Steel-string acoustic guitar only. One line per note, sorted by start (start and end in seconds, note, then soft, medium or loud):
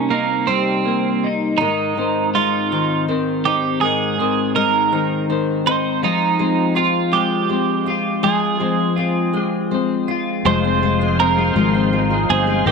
1.61 1.96 D#3 medium
1.97 3.07 D#3 soft
2.35 4.57 G#3 soft
2.72 3.45 C4 medium
3.08 3.81 D#3 soft
3.46 4.92 C4 soft
3.83 4.19 D#3 medium
4.20 5.29 D#3 medium
4.57 6.03 G#3 medium
4.92 5.66 C4 medium
5.30 6.10 D#3 soft
5.66 6.75 C4 medium
6.03 6.39 G#3 medium
6.39 7.49 G#3 soft
6.76 8.97 C4 medium
7.12 7.86 F4 medium
7.49 8.22 G#3 soft
7.86 9.33 F4 soft
8.23 8.60 G#3 medium
8.60 9.71 G#3 medium
8.97 10.64 C4 soft
9.33 10.08 F4 soft
9.71 10.45 G#3 soft
10.08 11.01 F4 soft
10.45 10.82 G#3 medium
10.64 11.19 C4 soft
10.83 11.38 G#3 medium
11.01 12.10 F4 medium
11.19 11.74 C4 medium
11.38 11.56 G#3 soft
11.56 11.92 G#3 medium
11.75 12.29 C4 soft
11.93 12.47 G#3 soft
12.11 12.72 F4 soft
12.29 12.72 C4 soft
12.47 12.72 G#3 soft
12.67 12.72 D#3 medium